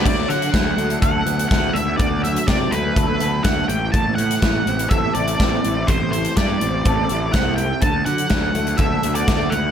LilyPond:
<<
  \new Staff \with { instrumentName = "Lead electric guitar" } { \time 4/4 \key d \mixolydian \tempo 4 = 124 d''8 fis''4. fis''4 fis''8 e''8 | d''8 e''8 d''8 b'4. fis''8 g''8 | a''8 fis''4. e''8 d''4. | c''8 c''8 d''2 fis''8 g''8 |
a''8 fis''4. e''8. d''8. fis''8 | }
  \new Staff \with { instrumentName = "Clean electric guitar" } { \time 4/4 \key d \mixolydian d8 fis8 fis8 a8 a'8 b8 a8 b8 | d8 fis8 fis8 a8 a'8 b8 a8 a,8 | a,8 e8 e8 c'8 a'8 e'8 c'8 e'8 | a,8 e8 e8 c'8 a'8 e'8 c'8 e'8 |
d8 fis8 fis8 a8 a'8 b8 a8 b8 | }
  \new Staff \with { instrumentName = "Picked electric bass" } { \clef bass \time 4/4 \key d \mixolydian d,8 d8 d,8 d,8 d,8 d,8 d,8 d,8 | d,4 c8 d,8 d,8 d,8 d,8 a,,8 | a,,8 a,8 a,,8 a,,8 a,,8 a,,8 a,,8 a,,8 | a,,4 g,8 a,,8 a,,8 a,,8 c,4 |
d,8 d8 d,8 d,8 d,8 d,8 d,8 d,8 | }
  \new DrumStaff \with { instrumentName = "Drums" } \drummode { \time 4/4 <cymc bd>8 hh16 hh16 <hh bd sn>8 hh16 hh16 <hh bd>8 hh16 hh16 <hh bd sn>8 hh8 | <hh bd>8 hh16 hh16 <hh bd sn>8 hh8 <hh bd>8 hh8 <hh bd sn>8 hh8 | <hh bd>8 hh16 hh16 <hh bd sn>8 hh16 hh16 <hh bd>8 hh16 hh16 <hh bd sn>8 hh8 | <hh bd>8 hh16 hh16 <hh bd sn>8 hh8 <hh bd>8 hh8 <hh bd sn>8 hh8 |
<hh bd>8 hh16 hh16 <hh bd sn>8 hh16 hh16 <hh bd>8 hh16 hh16 <hh bd sn>8 hh8 | }
>>